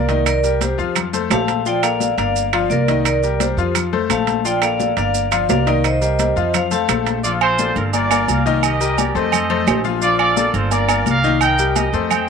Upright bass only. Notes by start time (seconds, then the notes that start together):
Already playing: C2
0.78 F2
1.30 A#1
2.18 G1
2.70 C2
3.57 F2
4.09 A#1
4.97 G1
5.49 C2
6.36 F2
6.89 A#1
7.76 G1
8.28 C2
9.15 F2
9.67 A#1
10.54 G1
11.06 C2
11.93 F2